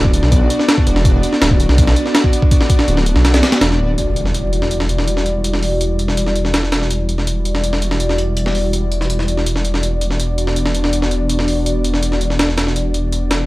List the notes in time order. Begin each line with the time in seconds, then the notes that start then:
Already playing: D1
0.05 kick
0.13 B3 D4 F#4 D5, closed hi-hat
0.23 B1, snare
0.32 kick, closed hi-hat
0.50 closed hi-hat
0.59 snare
0.69 snare, closed hi-hat
0.78 kick
0.87 E1, closed hi-hat
0.96 snare
1.05 kick, closed hi-hat
1.23 closed hi-hat
1.33 snare
1.42 D1, snare, closed hi-hat
1.51 kick
1.60 B3 D4 F#4 D5, closed hi-hat
1.69 B1, snare
1.78 kick, closed hi-hat
1.87 snare
1.96 closed hi-hat
2.06 snare
2.15 snare, closed hi-hat
2.24 kick
2.33 closed hi-hat
2.42 kick
2.51 kick, closed hi-hat
2.61 snare
2.70 kick, closed hi-hat
2.79 snare
2.88 D1, closed hi-hat
2.97 snare
3.06 closed hi-hat
3.16 B1, snare
3.25 snare, closed hi-hat
3.34 snare, closed hi-hat
3.43 snare, closed hi-hat
3.52 snare, closed hi-hat
3.61 E1, snare, closed hi-hat
3.71 snare
3.79 D1
3.98 E1 G3 E4 F#4 D5, closed hi-hat, impact
4.16 closed hi-hat
4.25 snare
4.34 closed hi-hat
4.53 closed hi-hat
4.62 snare
4.71 closed hi-hat
4.80 snare
4.89 closed hi-hat
4.98 snare
5.08 closed hi-hat
5.17 snare
5.26 closed hi-hat
5.44 closed hi-hat
5.53 snare
5.63 open hi-hat
5.81 closed hi-hat
5.99 closed hi-hat
6.08 snare
6.17 closed hi-hat
6.26 snare
6.36 closed hi-hat
6.45 snare
6.54 snare, closed hi-hat
6.63 snare
6.72 snare, closed hi-hat
6.82 snare
6.90 G3 E4 F#4 D5, closed hi-hat
7.09 closed hi-hat
7.18 snare
7.27 closed hi-hat
7.45 closed hi-hat
7.55 snare
7.64 closed hi-hat
7.73 snare
7.82 closed hi-hat
7.91 snare
8.00 closed hi-hat
8.09 snare
8.18 closed hi-hat
8.37 closed hi-hat
8.46 snare
8.55 open hi-hat
8.73 closed hi-hat
8.92 closed hi-hat
9.01 snare
9.10 closed hi-hat
9.19 snare
9.28 closed hi-hat
9.37 snare
9.46 closed hi-hat
9.56 snare
9.65 closed hi-hat
9.74 snare
9.83 E1 B3 D4 F#4 D5, closed hi-hat
10.01 closed hi-hat
10.11 snare
10.20 closed hi-hat
10.38 closed hi-hat
10.47 snare
10.56 closed hi-hat
10.66 snare
10.75 closed hi-hat
10.84 snare
10.93 closed hi-hat
11.02 snare
11.11 closed hi-hat
11.29 closed hi-hat
11.39 snare
11.48 open hi-hat
11.66 closed hi-hat
11.84 closed hi-hat
11.94 snare
12.03 closed hi-hat
12.12 snare
12.21 closed hi-hat
12.30 snare
12.39 snare, closed hi-hat
12.49 snare
12.58 snare, closed hi-hat
12.67 snare
12.76 B3 D4 F#4 D5, closed hi-hat
12.94 closed hi-hat
13.12 closed hi-hat
13.31 snare, closed hi-hat